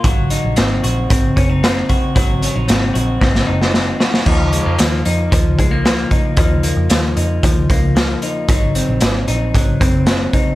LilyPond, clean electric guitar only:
\new Staff \with { instrumentName = "Clean electric guitar" } { \time 4/4 \key aes \mixolydian \tempo 4 = 114 <ges ges'>8 ees'8 c'8 ges'8 c'8 des'16 ees'16 c'8 ges'8 | <ges ges'>8 des'16 ees'16 c'8 ges'8 c'8 ees'8 c'8 ges'8 | <f ees'>8 aes16 bes16 f8 ees'8 f8 aes16 bes16 f8 ees'8 | <f ees'>8 bes8 f8 ees'8 f8 bes8 f8 ees'8 |
<ges ees'>8 c'8 ges8 ees'8 ges8 c'8 ges8 ees'8 | }